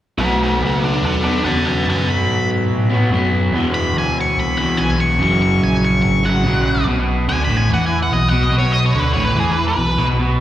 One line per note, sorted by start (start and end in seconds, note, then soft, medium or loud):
0.18 0.59 B1 medium
0.18 1.21 B2 medium
0.18 1.22 F#3 medium
0.18 1.23 B3 medium
0.18 0.39 F#4 medium
0.18 0.40 D5 medium
0.43 0.61 F#4 medium
0.43 0.62 D5 medium
0.61 1.01 C#2 medium
0.66 0.83 F#4 medium
0.66 0.84 D5 medium
0.84 1.02 A4 medium
0.84 1.03 F#5 medium
1.03 1.43 D#2 medium
1.03 1.22 A4 medium
1.03 1.23 F#5 medium
1.23 1.43 B2 medium
1.23 1.44 F#3 medium
1.23 1.47 B3 medium
1.23 1.43 A4 medium
1.23 1.43 F#5 medium
1.44 1.85 E2 medium
1.44 1.84 B2 medium
1.44 1.85 F#3 medium
1.44 1.89 B3 medium
1.44 1.64 F#5 medium
1.44 1.65 A5 medium
1.65 1.84 F#5 medium
1.65 1.86 A5 medium
1.86 2.26 F#2 medium
1.86 2.89 B2 medium
1.86 2.90 F#3 medium
1.86 2.88 B3 medium
1.86 2.07 F#5 medium
1.90 2.08 A5 medium
2.10 2.49 B5 medium
2.27 2.68 G#2 medium
2.70 3.09 A2 medium
2.90 3.10 B2 medium
2.90 3.10 F#3 medium
2.90 3.09 B3 medium
3.10 3.51 F#2 medium
3.10 3.51 B2 medium
3.10 3.52 F#3 medium
3.15 3.53 B3 medium
3.51 3.93 E2 medium
3.51 4.56 E2 medium
3.51 4.57 B2 medium
3.56 4.56 E3 medium
3.74 3.94 B5 medium
3.94 4.35 D2 medium
3.94 4.17 G#5 medium
4.21 4.38 C#6 medium
4.36 4.76 C2 medium
4.36 4.57 B5 medium
4.57 4.78 E2 medium
4.57 4.78 B2 medium
4.57 4.77 E3 medium
4.57 4.78 B5 medium
4.77 5.17 B1 medium
4.77 5.19 E2 medium
4.77 5.20 B2 medium
4.77 4.98 G#5 medium
4.82 5.20 E3 medium
5.00 5.20 C#6 medium
5.18 5.59 F#1 medium
5.18 6.22 F#2 medium
5.18 6.23 C#3 medium
5.22 6.22 F#3 medium
5.22 5.41 C#6 medium
5.42 5.62 C#6 medium
5.60 6.01 A#1 medium
5.60 5.83 G#5 medium
5.85 6.01 C#6 medium
6.02 6.43 G#1 medium
6.02 6.23 C#6 medium
6.23 6.43 F#2 medium
6.23 6.44 C#3 medium
6.23 6.43 F#3 medium
6.23 6.85 F#5 medium
6.44 6.85 A#1 medium
6.44 6.85 F#2 medium
6.44 6.86 C#3 medium
6.44 6.86 F#3 medium
6.85 7.24 B1 medium
6.85 7.28 B2 medium
7.26 7.46 D2 medium
7.26 7.49 D3 medium
7.26 7.42 G#5 medium
7.45 7.67 A1 medium
7.45 7.57 B5 medium
7.50 7.69 A2 medium
7.57 7.70 G#5 medium
7.69 8.08 E2 medium
7.69 8.11 E3 medium
7.74 7.85 F#5 medium
7.86 7.98 G#5 medium
8.03 8.13 F#5 medium
8.12 8.31 B1 medium
8.12 8.28 B2 medium
8.12 8.29 D#5 medium
8.29 8.51 B1 medium
8.29 8.51 B2 medium
8.29 8.43 F#5 medium
8.43 8.54 D#5 medium
8.51 8.90 B1 medium
8.51 8.93 B2 medium
8.58 8.72 C#5 medium
8.72 8.83 D#5 medium
8.86 8.99 C#5 medium
8.94 9.13 D2 medium
8.94 9.15 D3 loud
8.99 9.10 B4 medium
9.13 9.34 A1 medium
9.13 9.35 A2 medium
9.13 9.24 C#5 medium
9.25 9.37 B4 medium
9.36 9.75 E2 medium
9.36 9.77 E3 medium
9.40 9.51 G#4 medium
9.52 9.64 B4 medium
9.68 10.06 B4 medium
9.77 9.96 B1 medium
9.77 9.94 B2 medium
9.99 10.17 B1 medium
9.99 10.18 B2 loud
10.18 10.40 B1 medium
10.18 10.40 B2 medium